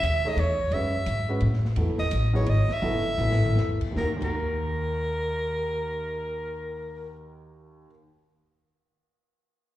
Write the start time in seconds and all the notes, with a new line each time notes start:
Already playing: E5
0.03 D#2, hi-hat pedal, ride
0.25 A3 D#4 G#4 C#5 D#5
0.37 E2 C#5, snare, ride
0.59 kick
0.71 F#2 G#3 C#4 F#4 E5, ride
0.75 B4
1.06 G#2, hi-hat pedal, ride
1.29 G#3 C#4 F#4 B4
1.40 A2, ride
1.53 snare
1.65 snare
1.76 E2 F#3 B3 E4 A4, ride
1.88 B1
1.98 A1 D#5, snare
2.11 A1, hi-hat pedal, ride
2.33 F#3 B3 E4 G#4 C#5
2.46 G#1 D#5, ride
2.68 muted upright bass stroke, snare
2.73 E5
2.82 F#1 F#3 B3 E4 A4, mid tom
2.95 floor tom
3.06 floor tom
3.18 A1 F#3 B3 E4 A4, floor tom, hi-hat pedal
3.32 snare
3.44 mid tom
3.56 E2, snare
3.81 kick, crash
3.91 D#2 D#3
3.96 D#2 A#3 F#4 A#4, kick, snare
4.03 A#4
4.16 D#2 D#3
4.21 D#2 A#3 A#4, kick, crash
4.25 F#4 A#4